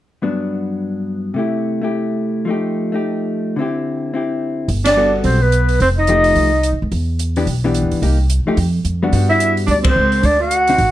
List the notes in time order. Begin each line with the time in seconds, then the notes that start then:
0.22 G2 F#3 B3 D4
1.34 C3 A3 E4
1.39 G4
1.82 A3 E4 G4
2.45 F3 A3 D#4
2.51 G4
2.92 A3 D#4 G4
3.56 D3 C4 E4
3.62 G4
4.14 C4 E4 G4
4.68 G1, kick, open hi-hat
4.85 D4 D5, snare, ride
4.97 G3 B3 F#4 A4
5.24 B1 C4 C5, kick, open hi-hat
5.41 B3 B4
5.52 closed hi-hat
5.69 open hi-hat
5.80 F1 C4 C5, kick, open hi-hat
5.98 D#4 D#5
6.07 F3 A3 D#4 G4, closed hi-hat
6.24 open hi-hat
6.35 C2, kick, open hi-hat
6.63 closed hi-hat
6.73 D#2
6.82 D2
6.92 E2, kick, open hi-hat
7.19 closed hi-hat
7.36 E3 B3 D4 G4, open hi-hat
7.47 B1, kick, open hi-hat
7.64 E3 B3 D4 G4
7.74 closed hi-hat
7.83 D2
7.91 C#2, open hi-hat
8.02 C2 A#3 D#4 G4, kick, open hi-hat
8.30 closed hi-hat
8.46 F3 A3 D#4 G4, muted upright bass stroke
8.57 F2, kick, open hi-hat
8.85 F2, closed hi-hat
9.03 G3 B3 D4 F#4
9.12 G2 G3 B3 D4 F#4, kick, open hi-hat
9.29 E4 E5
9.40 closed hi-hat
9.57 open hi-hat
9.67 D2 D4, kick, open hi-hat
9.71 D5
9.83 C4, kick, ride
9.87 C5
9.96 C#2
10.12 open hi-hat
10.22 D2 D4 D5, kick, open hi-hat
10.40 F#4 F#5
10.51 closed hi-hat
10.67 D3 C4 D#4 F#4, open hi-hat
10.78 A1, kick, open hi-hat